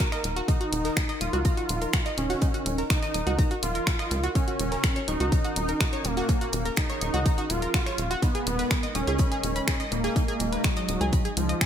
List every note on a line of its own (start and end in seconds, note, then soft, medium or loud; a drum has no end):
0.00 4.31 D#4 medium
0.00 0.39 A#4 loud
0.00 8.18 A#4 medium
0.00 0.44 F5 medium
0.00 4.31 A#5 medium
0.00 closed hi-hat medium
0.12 0.23 D#5 loud
0.12 0.23 D#6 medium
0.12 finger snap soft
0.12 snare soft
0.12 closed hi-hat soft
0.24 0.42 D#1 medium
0.24 closed hi-hat medium
0.36 0.48 F#4 loud
0.36 0.48 F#5 medium
0.36 closed hi-hat soft
0.48 1.11 D#4 loud
0.48 0.53 D#4 medium
0.48 0.53 D#5 medium
0.48 4.32 D#5 medium
0.48 kick loud
0.48 closed hi-hat medium
0.61 0.65 F#4 loud
0.61 0.65 F#5 medium
0.61 closed hi-hat soft
0.72 0.90 D#1 loud
0.72 closed hi-hat medium
0.72 closed hi-hat loud
0.85 0.93 A#4 medium
0.85 0.93 A#5 medium
0.85 snare soft
0.85 closed hi-hat soft
0.96 finger snap loud
0.96 kick loud
0.96 snare loud
0.96 closed hi-hat medium
1.09 1.20 D#5 loud
1.09 1.20 D#6 medium
1.09 closed hi-hat soft
1.21 1.30 D#1 medium
1.21 2.08 F4 loud
1.21 1.26 D#6 medium
1.21 closed hi-hat loud
1.21 closed hi-hat medium
1.33 1.50 C#2 medium
1.33 1.44 F#4 loud
1.33 1.44 F#5 medium
1.33 closed hi-hat soft
1.45 1.53 A#5 medium
1.45 1.53 A#6 medium
1.45 kick loud
1.45 closed hi-hat loud
1.45 closed hi-hat medium
1.57 1.62 F#4 loud
1.57 1.62 F#5 medium
1.57 closed hi-hat soft
1.69 1.87 D#1 medium
1.69 closed hi-hat medium
1.69 closed hi-hat loud
1.81 1.90 A#4 medium
1.81 1.90 A#5 medium
1.81 closed hi-hat soft
1.93 2.02 F#4 medium
1.93 2.02 F#5 medium
1.93 finger snap loud
1.93 kick loud
1.93 snare loud
1.93 closed hi-hat medium
2.06 2.17 D#5 loud
2.06 2.17 D#6 medium
2.06 closed hi-hat soft
2.18 2.35 D#1 medium
2.18 2.81 C#4 loud
2.18 closed hi-hat medium
2.18 closed hi-hat loud
2.30 2.41 F#4 loud
2.30 2.41 F#5 medium
2.30 snare soft
2.30 closed hi-hat soft
2.42 2.47 D#4 medium
2.42 2.47 D#5 medium
2.42 kick loud
2.42 closed hi-hat medium
2.54 2.59 F#4 loud
2.54 2.59 F#5 medium
2.54 closed hi-hat soft
2.66 2.84 D#1 loud
2.66 closed hi-hat loud
2.66 closed hi-hat medium
2.78 2.86 A#4 medium
2.78 2.86 A#5 medium
2.78 snare soft
2.78 closed hi-hat soft
2.90 3.53 D#4 loud
2.90 finger snap loud
2.90 kick loud
2.90 snare loud
2.90 closed hi-hat loud
2.90 closed hi-hat medium
3.03 3.14 D#5 loud
3.03 3.13 D#6 medium
3.03 closed hi-hat soft
3.14 3.23 D#1 medium
3.14 3.19 D#6 medium
3.14 closed hi-hat medium
3.27 3.44 C#2 medium
3.27 3.38 F#4 loud
3.27 3.38 F#5 medium
3.27 closed hi-hat soft
3.39 3.47 A#5 medium
3.39 3.47 A#6 medium
3.39 kick loud
3.39 closed hi-hat medium
3.51 3.56 F#4 loud
3.51 3.56 F#5 medium
3.51 closed hi-hat soft
3.63 3.80 D#1 medium
3.63 4.26 F4 loud
3.63 closed hi-hat loud
3.63 closed hi-hat medium
3.75 3.83 A#4 medium
3.75 3.83 A#5 medium
3.75 closed hi-hat soft
3.87 3.95 F#4 medium
3.87 3.95 F#5 medium
3.87 finger snap loud
3.87 kick loud
3.87 snare loud
3.87 closed hi-hat medium
3.99 4.11 D#5 loud
3.99 4.11 D#6 medium
3.99 finger snap soft
3.99 snare soft
3.99 closed hi-hat soft
4.11 4.29 C#2 loud
4.11 closed hi-hat medium
4.23 4.35 F#4 loud
4.23 4.35 F#5 medium
4.23 closed hi-hat soft
4.35 4.40 C#4 medium
4.35 8.19 C#4 medium
4.35 4.99 C#4 loud
4.35 6.27 F#4 medium
4.35 4.40 C#5 medium
4.35 kick loud
4.35 closed hi-hat medium
4.48 4.53 F#4 loud
4.48 4.53 F#5 medium
4.48 closed hi-hat soft
4.59 4.77 D#1 loud
4.59 closed hi-hat loud
4.59 closed hi-hat medium
4.72 4.80 A#4 medium
4.72 4.80 A#5 medium
4.72 snare soft
4.72 closed hi-hat soft
4.83 finger snap loud
4.83 kick loud
4.83 snare loud
4.83 closed hi-hat medium
4.96 5.07 C#5 loud
4.96 5.07 C#6 medium
4.96 closed hi-hat soft
5.08 5.17 D#1 medium
5.08 6.06 D#4 loud
5.08 5.13 C#6 medium
5.08 closed hi-hat medium
5.20 5.38 C#2 medium
5.20 5.32 F#4 loud
5.20 5.32 F#5 medium
5.20 closed hi-hat soft
5.32 5.41 A#5 medium
5.32 5.41 A#6 medium
5.32 kick loud
5.32 closed hi-hat medium
5.32 closed hi-hat loud
5.45 5.49 F#4 loud
5.45 5.49 F#5 medium
5.45 closed hi-hat soft
5.56 5.74 D#1 medium
5.56 closed hi-hat medium
5.56 closed hi-hat loud
5.68 5.77 A#4 medium
5.68 5.77 A#5 medium
5.68 closed hi-hat soft
5.80 5.89 F#4 medium
5.80 5.89 F#5 medium
5.80 finger snap loud
5.80 kick loud
5.80 snare loud
5.80 closed hi-hat medium
5.93 6.04 C#5 loud
5.93 6.04 C#6 medium
5.93 closed hi-hat soft
6.04 6.22 D#1 medium
6.04 6.68 A#3 loud
6.04 closed hi-hat medium
6.17 6.28 F#4 loud
6.17 6.28 F#5 medium
6.17 snare soft
6.17 closed hi-hat soft
6.29 6.34 C#4 medium
6.29 8.21 G#4 medium
6.29 6.34 C#5 medium
6.29 kick loud
6.29 closed hi-hat medium
6.41 6.46 F#4 loud
6.41 6.46 F#5 medium
6.41 closed hi-hat soft
6.53 6.71 D#1 loud
6.53 closed hi-hat medium
6.53 closed hi-hat loud
6.65 6.74 A#4 medium
6.65 6.74 A#5 medium
6.65 snare soft
6.65 closed hi-hat soft
6.76 7.51 D#4 loud
6.76 finger snap loud
6.76 kick loud
6.76 snare loud
6.76 closed hi-hat medium
6.90 7.01 C#5 loud
6.90 7.00 C#6 medium
6.90 closed hi-hat soft
7.01 7.10 D#1 medium
7.01 7.07 C#6 medium
7.01 closed hi-hat medium
7.14 7.31 C#2 medium
7.14 7.25 F#4 loud
7.14 7.25 F#5 medium
7.14 closed hi-hat soft
7.26 7.34 A#5 medium
7.26 7.34 A#6 medium
7.26 kick loud
7.26 closed hi-hat medium
7.38 7.43 F#4 loud
7.38 7.43 F#5 medium
7.38 closed hi-hat soft
7.50 7.67 D#1 medium
7.50 8.13 F4 loud
7.50 closed hi-hat loud
7.50 closed hi-hat medium
7.62 7.70 A#4 medium
7.62 7.70 A#5 medium
7.62 closed hi-hat soft
7.74 7.82 F#4 medium
7.74 7.82 F#5 medium
7.74 finger snap loud
7.74 kick loud
7.74 snare loud
7.74 closed hi-hat medium
7.86 7.98 C#5 loud
7.86 7.98 C#6 medium
7.86 finger snap soft
7.86 snare medium
7.86 closed hi-hat soft
7.98 8.16 D#1 medium
7.98 closed hi-hat medium
8.11 8.22 F#4 loud
8.11 8.22 F#5 medium
8.11 closed hi-hat soft
8.22 11.66 G#3 medium
8.22 8.86 B3 loud
8.22 11.66 D#4 medium
8.22 8.28 D#4 medium
8.22 10.14 A#4 medium
8.22 8.27 D#5 medium
8.22 11.66 D#5 medium
8.22 kick loud
8.22 closed hi-hat medium
8.35 8.40 G#4 loud
8.35 8.40 G#5 medium
8.35 closed hi-hat soft
8.47 8.64 D#1 loud
8.47 closed hi-hat loud
8.47 closed hi-hat medium
8.59 8.67 B4 medium
8.59 8.67 B5 medium
8.59 snare soft
8.59 closed hi-hat soft
8.70 finger snap loud
8.70 kick loud
8.70 snare loud
8.70 closed hi-hat medium
8.83 8.94 D#5 loud
8.83 8.94 D#6 medium
8.83 closed hi-hat soft
8.95 9.04 D#1 medium
8.95 9.82 C#4 loud
8.95 9.00 D#6 medium
8.95 closed hi-hat medium
9.07 9.25 C#2 medium
9.07 9.19 G#4 loud
9.07 9.19 G#5 medium
9.07 closed hi-hat soft
9.18 9.28 B5 medium
9.18 kick loud
9.18 closed hi-hat medium
9.32 9.36 G#4 loud
9.32 9.36 G#5 medium
9.32 closed hi-hat soft
9.43 9.61 D#1 medium
9.43 closed hi-hat loud
9.43 closed hi-hat medium
9.56 9.64 B4 medium
9.56 9.64 B5 medium
9.56 closed hi-hat soft
9.67 9.76 G#4 medium
9.67 9.76 G#5 medium
9.67 finger snap loud
9.67 kick loud
9.67 snare loud
9.67 closed hi-hat medium
9.80 9.91 D#5 loud
9.80 9.91 D#6 medium
9.80 closed hi-hat soft
9.92 10.09 D#1 medium
9.92 10.66 A#3 loud
9.92 closed hi-hat medium
10.04 10.15 G#4 loud
10.04 10.15 G#5 medium
10.04 snare medium
10.04 closed hi-hat soft
10.16 10.21 D#4 medium
10.16 11.66 G#4 medium
10.16 10.21 D#5 medium
10.16 kick loud
10.16 closed hi-hat medium
10.28 10.33 G#4 loud
10.28 10.33 G#5 medium
10.28 closed hi-hat soft
10.40 10.58 D#1 loud
10.40 closed hi-hat medium
10.40 closed hi-hat loud
10.52 10.61 B4 medium
10.52 10.61 B5 medium
10.52 snare soft
10.52 closed hi-hat soft
10.64 11.28 F#3 loud
10.64 finger snap loud
10.64 kick loud
10.64 snare loud
10.64 closed hi-hat medium
10.76 10.88 D#5 loud
10.76 10.87 D#6 medium
10.76 closed hi-hat soft
10.88 10.97 D#1 medium
10.88 10.94 D#6 medium
10.88 closed hi-hat medium
11.01 11.18 C#2 medium
11.01 11.12 G#4 loud
11.01 11.12 G#5 medium
11.01 closed hi-hat soft
11.13 11.21 B5 medium
11.13 kick loud
11.13 closed hi-hat medium
11.25 11.30 G#4 loud
11.25 11.30 G#5 medium
11.25 closed hi-hat soft
11.37 11.54 C#2 loud
11.37 11.66 F3 loud
11.37 closed hi-hat loud
11.37 closed hi-hat medium
11.49 11.61 D#5 medium
11.49 11.61 D#6 medium
11.49 closed hi-hat soft
11.61 11.66 G#5 medium
11.61 11.66 G#6 medium
11.61 finger snap loud
11.61 kick loud
11.61 snare loud
11.61 closed hi-hat medium